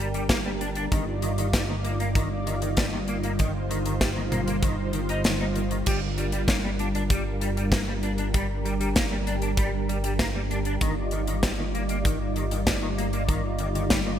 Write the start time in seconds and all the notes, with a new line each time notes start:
Already playing: G1 G3 D4 G4 A#4
0.14 G3, closed hi-hat
0.29 A#3, kick, snare, closed hi-hat
0.45 G3
0.61 D4, closed hi-hat
0.75 D4, closed hi-hat
0.92 G1 D#3 G3 D#4 F4 D5, kick, closed hi-hat
1.22 D#3, closed hi-hat
1.38 D#3, closed hi-hat
1.53 G3, kick, snare, closed hi-hat
1.69 D#3
1.84 A#3, closed hi-hat
2.00 A#3, closed hi-hat
2.15 D#3, kick, closed hi-hat
2.46 D#3, closed hi-hat
2.62 D#3, closed hi-hat
2.77 G3, kick, snare, closed hi-hat
2.93 D#3
3.08 A#3, closed hi-hat
3.23 A#3, closed hi-hat
3.39 D#3 C5, kick, closed hi-hat
3.70 D#3, closed hi-hat
3.86 D#3, closed hi-hat
4.01 G3, kick, snare, closed hi-hat
4.16 D#3
4.32 A#3, closed hi-hat, mid tom
4.47 A#3, closed hi-hat
4.63 D#3, kick, closed hi-hat
4.93 D#3, closed hi-hat
5.09 D#4, closed hi-hat
5.24 D#3, snare, closed hi-hat
5.40 D#4
5.56 D#3, closed hi-hat
5.71 D#3, closed hi-hat
5.86 G1 G3 D4 A#4, kick, closed hi-hat, crash
6.18 G3, closed hi-hat
6.32 G3, closed hi-hat
6.48 A#3, kick, snare, closed hi-hat
6.64 G3
6.79 D4, closed hi-hat
6.95 D4, closed hi-hat
7.10 G3, kick, closed hi-hat
7.41 G3, closed hi-hat
7.57 G3, closed hi-hat
7.72 A#3, kick, snare, closed hi-hat
7.88 G3
8.03 D4, closed hi-hat
8.18 D4, closed hi-hat
8.34 G3 G4, kick, closed hi-hat
8.65 G3, closed hi-hat
8.80 G3, closed hi-hat
8.96 A#3, kick, snare, closed hi-hat
9.11 G3
9.27 D4, closed hi-hat
9.42 D4, closed hi-hat
9.57 G3, kick, closed hi-hat
9.89 G3, closed hi-hat
10.04 G3, closed hi-hat
10.19 A#3, kick, snare, closed hi-hat
10.35 G3
10.51 D4, closed hi-hat
10.65 D4, closed hi-hat
10.81 G1 D#3 D#4 F4 D5, kick, closed hi-hat
11.11 D#3, closed hi-hat
11.27 D#3, closed hi-hat
11.43 G3, kick, snare, closed hi-hat
11.59 D#3
11.74 A#3, closed hi-hat
11.89 A#3, closed hi-hat
12.05 D#3, kick, closed hi-hat
12.36 D#3, closed hi-hat
12.51 D#3, closed hi-hat
12.67 G3, kick, snare, closed hi-hat
12.82 D#3
12.98 A#3, closed hi-hat
13.13 A#3, closed hi-hat
13.29 D#3, kick, closed hi-hat
13.59 D#3, closed hi-hat
13.75 D#3, closed hi-hat
13.90 G3, kick, snare, closed hi-hat
14.06 D#3